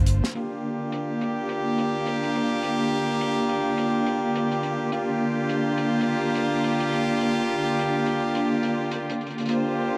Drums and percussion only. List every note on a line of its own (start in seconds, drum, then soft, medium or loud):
0.06 closed hi-hat medium
0.24 snare medium
0.35 closed hi-hat medium
0.92 closed hi-hat medium
1.21 closed hi-hat medium
1.49 closed hi-hat medium
1.78 closed hi-hat medium
2.06 closed hi-hat medium
2.23 closed hi-hat medium
2.35 closed hi-hat medium
2.63 closed hi-hat medium
3.21 closed hi-hat medium
3.49 closed hi-hat medium
3.78 closed hi-hat medium
4.06 closed hi-hat medium
4.35 closed hi-hat medium
4.51 closed hi-hat medium
4.63 closed hi-hat medium
4.92 closed hi-hat medium
5.49 closed hi-hat medium
5.78 closed hi-hat medium
6.01 closed hi-hat medium
6.35 closed hi-hat medium
6.64 closed hi-hat medium
6.80 closed hi-hat medium
6.93 closed hi-hat medium
7.21 closed hi-hat medium
7.79 closed hi-hat medium
8.06 closed hi-hat medium
8.35 closed hi-hat medium
8.63 closed hi-hat medium
8.91 closed hi-hat medium
9.10 closed hi-hat medium
9.21 closed hi-hat soft
9.26 closed hi-hat soft
9.30 closed hi-hat soft
9.38 closed hi-hat soft
9.40 closed hi-hat medium
9.46 closed hi-hat medium
9.49 closed hi-hat medium